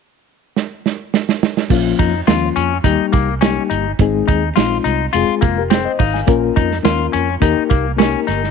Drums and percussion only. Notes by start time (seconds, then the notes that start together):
0.56 snare
0.86 snare
1.14 snare
1.29 snare
1.43 snare
1.57 snare
1.70 kick, crash
1.99 kick, closed hi-hat
2.27 snare, closed hi-hat
2.56 closed hi-hat
2.84 kick, closed hi-hat
3.13 kick, closed hi-hat
3.42 snare, closed hi-hat
3.71 closed hi-hat
3.99 kick, closed hi-hat
4.28 kick, closed hi-hat
4.57 snare, closed hi-hat
4.85 closed hi-hat
5.13 closed hi-hat
5.42 kick, closed hi-hat
5.71 snare, closed hi-hat
5.99 kick, open hi-hat
6.15 snare
6.27 kick, closed hi-hat
6.57 kick, closed hi-hat
6.71 snare
6.85 snare, closed hi-hat
7.13 closed hi-hat
7.42 kick, closed hi-hat
7.70 kick, closed hi-hat
7.99 snare, closed hi-hat
8.28 snare, closed hi-hat
8.44 snare